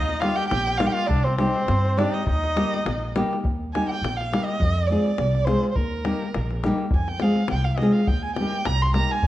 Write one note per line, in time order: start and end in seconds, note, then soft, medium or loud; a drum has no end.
0.00 0.27 D#2 medium
0.00 0.22 D#4 medium
0.00 0.21 D#5 loud
0.09 davul high soft
0.20 0.42 G3 medium
0.20 0.42 A#3 medium
0.20 0.42 D#4 medium
0.20 0.38 F4 medium
0.20 0.42 G4 medium
0.20 0.37 F5 medium
0.20 davul high medium
0.36 0.47 G4 medium
0.36 0.47 G5 loud
0.36 davul high soft
0.48 0.87 A#1 medium
0.48 0.80 G4 medium
0.48 0.79 G5 loud
0.48 davul high medium
0.67 davul high soft
0.77 1.00 G3 medium
0.77 1.00 A#3 medium
0.77 1.01 D#4 medium
0.77 0.88 F4 medium
0.77 0.88 F5 medium
0.77 davul high medium
0.82 1.01 G4 medium
0.86 0.96 G4 medium
0.86 0.94 G5 medium
0.92 1.10 F4 medium
0.92 1.08 F5 loud
0.97 davul high soft
1.06 1.45 C2 medium
1.06 1.26 D4 medium
1.06 1.25 D5 medium
1.11 davul low medium
1.24 1.37 C4 medium
1.24 1.38 C5 medium
1.24 davul high soft
1.38 1.59 G3 medium
1.38 1.99 C4 medium
1.38 1.59 C4 medium
1.38 1.60 D#4 medium
1.38 1.59 G4 medium
1.38 1.99 C5 medium
1.38 davul high medium
1.56 davul high soft
1.68 2.04 G2 loud
1.68 davul high medium
1.85 davul high soft
1.97 2.17 G3 medium
1.97 2.18 C4 medium
1.97 2.13 D4 medium
1.97 2.18 D#4 medium
1.97 2.18 G4 medium
1.97 2.15 D5 medium
1.97 davul high medium
2.11 2.26 D#4 medium
2.11 2.27 D#5 medium
2.11 davul high soft
2.26 2.62 D#2 medium
2.26 3.10 D#4 medium
2.26 3.11 D#5 medium
2.26 davul low loud
2.44 davul high soft
2.56 2.76 G3 medium
2.56 2.76 A#3 medium
2.56 2.77 D#4 medium
2.56 2.77 G4 medium
2.56 davul high medium
2.74 davul high soft
2.86 3.21 A#1 medium
2.86 davul high medium
3.15 3.35 G3 medium
3.15 3.35 A#3 medium
3.15 3.35 D#4 medium
3.15 3.35 G4 medium
3.15 davul high medium
3.33 davul high soft
3.44 3.79 D#2 medium
3.44 davul low medium
3.73 3.94 G3 medium
3.73 3.94 A#3 medium
3.73 3.94 D#4 medium
3.73 3.94 G4 medium
3.73 3.88 G#5 medium
3.73 davul high medium
3.89 4.18 G5 medium
3.89 davul high soft
4.01 4.37 A#1 medium
4.01 davul high medium
4.16 4.46 F5 medium
4.20 davul high soft
4.32 4.51 G3 medium
4.32 4.52 A#3 medium
4.32 4.52 D#4 medium
4.32 4.52 G4 medium
4.32 davul high medium
4.44 4.88 D#5 medium
4.48 davul high soft
4.60 4.95 F2 medium
4.60 davul low medium
4.87 5.10 G#3 medium
4.87 5.46 D5 medium
4.91 5.10 C4 soft
4.91 5.10 F4 medium
4.91 5.11 G#4 medium
5.06 davul high soft
5.19 5.54 C2 medium
5.19 davul high medium
5.35 davul high soft
5.45 5.67 G#3 medium
5.45 5.67 C4 medium
5.45 5.67 F4 medium
5.45 5.68 G#4 medium
5.45 5.69 C5 medium
5.45 davul high medium
5.64 davul high soft
5.71 5.77 C5 medium
5.76 6.12 D#2 medium
5.76 6.63 A#4 medium
5.76 davul low medium
6.05 6.25 G3 medium
6.05 6.25 A#3 medium
6.05 6.26 D#4 medium
6.05 6.26 G4 medium
6.05 davul high medium
6.22 davul high soft
6.34 6.70 A#1 medium
6.34 davul high medium
6.51 davul high soft
6.64 6.84 G3 medium
6.64 6.83 A#3 medium
6.64 6.84 D#4 medium
6.64 6.84 G4 loud
6.64 davul high medium
6.78 davul high soft
6.91 7.28 F2 medium
6.91 7.09 G#5 medium
6.91 davul low medium
7.08 7.23 G5 medium
7.08 davul high soft
7.19 7.41 G#3 medium
7.19 7.41 C4 medium
7.19 7.42 F4 medium
7.19 7.42 G#4 medium
7.19 7.51 F5 medium
7.19 davul high medium
7.35 davul high soft
7.48 7.85 C2 medium
7.48 7.66 G5 medium
7.48 davul high medium
7.64 7.79 F5 medium
7.64 davul high soft
7.77 7.94 D#5 medium
7.77 davul high medium
7.81 8.00 G#3 medium
7.81 8.00 C4 medium
7.81 8.00 F4 medium
7.81 8.00 G#4 medium
7.92 8.09 F5 medium
7.92 davul high soft
8.07 8.43 D#2 medium
8.07 8.24 G5 medium
8.07 davul low medium
8.22 8.35 G#5 medium
8.35 8.67 G5 medium
8.35 davul high medium
8.40 8.58 G3 medium
8.40 8.58 A#3 soft
8.40 8.58 D#4 medium
8.40 8.59 G4 medium
8.53 davul high soft
8.65 9.01 C2 medium
8.65 8.83 A#5 loud
8.65 davul high medium
8.82 8.95 C6 medium
8.82 davul high soft
8.94 9.13 G3 medium
8.94 9.14 A#3 medium
8.94 9.14 D#4 medium
8.94 9.14 G4 medium
8.94 9.13 A#5 medium
8.94 davul high medium
9.11 9.27 G#5 medium
9.11 davul high soft
9.22 9.27 F2 medium
9.22 davul low medium